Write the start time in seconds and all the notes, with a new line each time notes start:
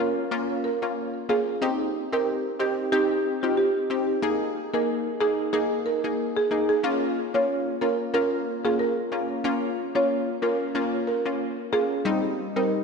0.00 A#3 C#4 F4 A#4
0.31 A#3 C#4 F4
0.64 A#4
0.82 A#3 C#4 F4
1.29 A#3 C#4 F4 G#4
1.62 C4 D#4 G4
2.13 C4 D#4 G4 A#4
2.59 C4 D#4 G4
2.92 C4 D#4 G4
3.43 C4 D#4 F4 G4
3.57 G4
3.90 C4 D#4 G4
4.22 A#3 D#4 G#4
4.74 A#3 D#4 G#4 A#4
5.20 A#3 D#4 G#4
5.53 A#3 D#4 G#4
5.86 A#4
6.04 A#3 D#4 G#4
6.37 G#4
6.51 A#3 D#4 G#4
6.69 G#4
6.83 A#3 C#4 F4
7.34 A#3 C#4 F4 C#5
7.81 A#3 C#4 F4 A#4
8.14 A#3 C#4 F4 A#4
8.65 A#3 C#4 F4 G#4
8.79 A#4
9.12 A#3 C#4 F4
9.44 A#3 C#4 F4
9.95 A#3 C#4 F4 C#5
10.42 A#3 C#4 F4 A#4
10.75 A#3 C#4 F4
11.07 A#4
11.25 A#3 C#4 F4
11.72 A#3 C#4 F4 G#4
12.05 G3 C4 D#4
12.56 G3 C4 D#4 A#4